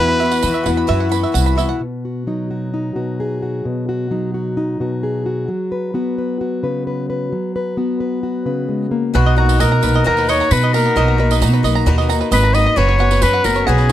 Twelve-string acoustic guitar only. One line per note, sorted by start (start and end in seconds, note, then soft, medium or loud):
0.00 0.19 E3 medium
0.00 0.20 B3 loud
0.00 0.19 E4 loud
0.00 0.18 F#4 loud
0.19 0.42 B3 medium
0.19 0.42 E4 medium
0.19 0.42 F#4 medium
0.42 0.65 E3 medium
0.42 0.65 B3 medium
0.42 0.64 E4 medium
0.42 0.62 F#4 medium
0.64 0.86 B3 medium
0.64 0.87 E4 medium
0.64 0.87 F#4 medium
0.87 1.11 E3 medium
0.87 1.11 B3 medium
0.87 1.10 E4 loud
0.87 1.08 F#4 medium
1.09 1.32 B3 soft
1.09 1.33 E4 medium
1.09 1.33 F#4 medium
1.32 1.56 E3 medium
1.32 1.57 B3 medium
1.32 1.55 E4 medium
1.32 1.54 F#4 medium
1.56 1.81 B3 soft
1.56 1.80 E4 medium
1.56 1.80 F#4 medium
9.14 9.37 B2 medium
9.14 9.38 F#3 medium
9.14 9.38 A#3 medium
9.14 9.36 D#4 medium
9.14 9.35 F#4 medium
9.36 9.59 A#3 soft
9.36 9.59 D#4 medium
9.36 9.60 F#4 medium
9.58 9.82 F#3 medium
9.58 9.82 A#3 medium
9.58 9.81 D#4 medium
9.58 9.80 F#4 medium
9.81 10.04 A#3 soft
9.81 10.04 D#4 medium
9.81 10.05 F#4 medium
10.04 10.28 B2 medium
10.04 10.28 F#3 medium
10.04 10.28 A#3 medium
10.04 10.28 D#4 medium
10.04 10.26 F#4 medium
10.27 10.50 A#3 soft
10.27 10.51 D#4 medium
10.27 10.50 F#4 medium
10.51 10.73 F#3 medium
10.51 10.74 A#3 medium
10.51 10.73 D#4 medium
10.51 10.72 F#4 medium
10.73 10.96 A#3 soft
10.73 10.96 D#4 soft
10.73 10.96 F#4 medium
10.96 11.19 B2 medium
10.96 11.19 F#3 medium
10.96 11.19 A#3 medium
10.96 11.19 D#4 loud
10.96 11.17 F#4 medium
11.18 11.40 A#3 medium
11.18 11.41 D#4 medium
11.18 11.41 F#4 medium
11.40 11.63 F#3 medium
11.40 11.64 A#3 medium
11.40 11.63 D#4 medium
11.40 11.62 F#4 medium
11.63 11.86 A#3 medium
11.63 11.86 D#4 medium
11.63 11.86 F#4 medium
11.86 12.09 B2 loud
11.86 12.09 F#3 medium
11.86 12.09 A#3 loud
11.86 12.09 D#4 loud
11.86 12.08 F#4 loud
12.09 12.31 A#3 medium
12.09 12.32 D#4 medium
12.09 12.32 F#4 medium
12.31 12.54 F#3 medium
12.31 12.54 A#3 medium
12.31 12.54 D#4 medium
12.31 12.52 F#4 medium
12.53 12.77 A#3 soft
12.53 12.77 D#4 soft
12.53 12.77 F#4 medium
12.76 12.99 F#2 medium
12.76 12.99 C#3 medium
12.76 13.00 F#3 medium
12.76 12.99 B3 medium
12.76 12.98 C#4 loud
12.76 12.97 F#4 loud
12.98 13.20 F#3 medium
12.98 13.21 B3 medium
12.98 13.22 C#4 medium
12.98 13.22 F#4 medium
13.21 13.44 F#3 medium
13.21 13.44 B3 medium
13.21 13.43 C#4 medium
13.21 13.43 F#4 medium
13.44 13.67 F#3 soft
13.44 13.68 B3 soft
13.44 13.67 C#4 medium
13.44 13.67 F#4 medium
13.68 13.90 F#2 medium
13.68 13.90 C#3 medium
13.68 13.90 F#3 medium
13.68 13.90 B3 medium
13.68 13.90 C#4 loud
13.68 13.89 F#4 loud